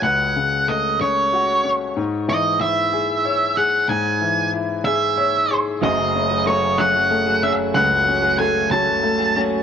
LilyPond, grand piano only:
\new Staff \with { instrumentName = "Grand piano" } { \time 6/8 \key fis \dorian \tempo 4. = 62 <cis, cis' fis'>8 cis8 a8 cis'8 fis'8 cis'8 | gis,8 e8 e'8 gis'8 cis''8 gis'8 | gis,8 e8 e'8 gis'8 cis''8 gis'8 | <fis,, fis,>8 cis'8 a8 cis'8 a8 cis'8 |
cis,8 cis'8 a8 cis'8 a8 cis'8 | }